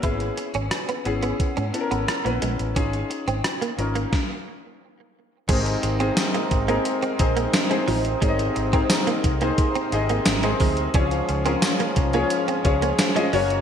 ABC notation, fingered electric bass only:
X:1
M:4/4
L:1/16
Q:1/4=88
K:Ab
V:1 name="Fingered electric bass" clef=bass
^G,,,2 z G,,, z2 G,,,2 z ^G,, z G,,, z B,,, B,,, =A,,, | z3 A,,, z2 A,,,2 z8 | A,,,2 A,,,2 z2 A,,,2 z2 B,,,2 z2 =A,,,2 | A,,,2 A,,,2 z2 C,,2 z2 A,,,2 A,,,2 =D,,2 |
D,,2 D,,2 z2 C,,2 z2 D,,2 z2 _G,,,2 |]